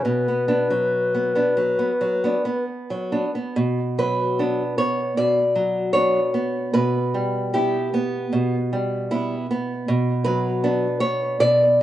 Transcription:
0.03 nylon-string guitar B2, flute B4
0.28 nylon-string guitar B3
0.48 nylon-string guitar B3 D4
0.70 nylon-string guitar F#3
1.14 nylon-string guitar B3
1.35 nylon-string guitar B3 D4
1.57 nylon-string guitar F#3
1.79 nylon-string guitar B3
2.01 nylon-string guitar F#3
2.24 nylon-string guitar B3 D4
2.45 nylon-string guitar B3
2.90 nylon-string guitar F#3
3.12 nylon-string guitar B3 D4
3.35 nylon-string guitar B3
3.56 nylon-string guitar B2
3.99 nylon-string guitar F#3 B4
4.39 nylon-string guitar B3 D4
4.78 nylon-string guitar B3 C#5
5.17 nylon-string guitar B2 D5
5.56 nylon-string guitar F#3
5.93 nylon-string guitar B3 D4 C#5
6.34 nylon-string guitar B3
6.74 nylon-string guitar B2 B4
7.14 nylon-string guitar G3
7.54 nylon-string guitar B3 E4 G4
7.94 nylon-string guitar B3
8.33 nylon-string guitar B2
8.73 nylon-string guitar G3
9.11 nylon-string guitar B3 E4
9.51 nylon-string guitar B3
9.88 nylon-string guitar B2
10.24 nylon-string guitar F#3 B4
10.64 nylon-string guitar B3 D4
11.00 nylon-string guitar B3 C#5
11.40 nylon-string guitar B2 D5

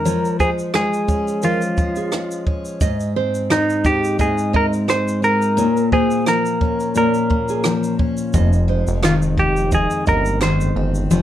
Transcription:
Already playing: steel-string acoustic guitar F2 G#3 C4, clean electric guitar A#4
0.05 steel-string acoustic guitar F3, nylon-string guitar C#5, shaker
0.25 shaker
0.40 steel-string acoustic guitar G#3, clean electric guitar G#4, nylon-string guitar C5, kick, shaker
0.59 shaker
0.74 steel-string acoustic guitar G#3, clean electric guitar G#4, cross-stick, shaker
0.93 shaker
1.08 steel-string acoustic guitar C#4, kick, shaker
1.28 shaker
1.42 steel-string acoustic guitar F3, clean electric guitar F4, nylon-string guitar A#4, shaker
1.61 shaker
1.77 steel-string acoustic guitar G#3, kick, shaker
1.96 nylon-string guitar G#4, shaker
2.12 steel-string acoustic guitar G#3, cross-stick, shaker
2.31 shaker
2.47 steel-string acoustic guitar C#4, kick
2.65 shaker
2.81 steel-string acoustic guitar G#2, nylon-string guitar D#5, kick, shaker
3.00 shaker
3.16 steel-string acoustic guitar C4, nylon-string guitar C5
3.34 shaker
3.50 steel-string acoustic guitar G#3, clean electric guitar D#4, cross-stick, shaker
3.70 shaker
3.85 steel-string acoustic guitar D#4, clean electric guitar G4, kick, cross-stick, shaker
4.04 shaker
4.19 steel-string acoustic guitar G#2, clean electric guitar G#4, nylon-string guitar D#5, kick, shaker
4.38 shaker
4.53 steel-string acoustic guitar C4, clean electric guitar A#4, nylon-string guitar D#5, kick
4.73 shaker
4.88 steel-string acoustic guitar G#3, nylon-string guitar C5, clean electric guitar C5, cross-stick, shaker
5.08 shaker
5.22 steel-string acoustic guitar D#4, clean electric guitar A#4, shaker
5.42 shaker
5.57 steel-string acoustic guitar A#2, nylon-string guitar C#5, shaker
5.77 shaker
5.92 steel-string acoustic guitar A#3, clean electric guitar G#4, nylon-string guitar C5, kick
6.11 shaker
6.26 steel-string acoustic guitar F3, clean electric guitar A#4, cross-stick, shaker
6.46 shaker
6.61 steel-string acoustic guitar C#4, kick
6.80 shaker
6.95 steel-string acoustic guitar A#2, nylon-string guitar A#4, clean electric guitar A#4, shaker
7.14 shaker
7.30 steel-string acoustic guitar A#3, kick
7.48 nylon-string guitar G#4, shaker
7.64 steel-string acoustic guitar F3, cross-stick, shaker
7.83 shaker
7.99 steel-string acoustic guitar C#4, kick
8.17 shaker
8.33 analog synth bass F1, steel-string acoustic guitar F2, nylon-string guitar D#5, kick, shaker
8.53 shaker
8.68 steel-string acoustic guitar G#3, nylon-string guitar C5
8.87 analog synth bass F1, shaker
9.03 steel-string acoustic guitar D#3, clean electric guitar F4, cross-stick, clap, shaker
9.22 shaker
9.38 steel-string acoustic guitar C4, clean electric guitar G4, kick, cross-stick
9.56 shaker
9.72 steel-string acoustic guitar F2, clean electric guitar G#4, nylon-string guitar D#5, kick, shaker
9.90 shaker
10.06 analog synth bass G1, steel-string acoustic guitar G#3, clean electric guitar A#4, nylon-string guitar D#5, kick, shaker
10.25 shaker
10.41 steel-string acoustic guitar D#3, nylon-string guitar C5, clean electric guitar C5, cross-stick, clap, shaker
10.61 shaker
10.76 analog synth bass G1, steel-string acoustic guitar C4
10.95 shaker
11.11 analog synth bass F1, steel-string acoustic guitar F3, nylon-string guitar C#5, shaker

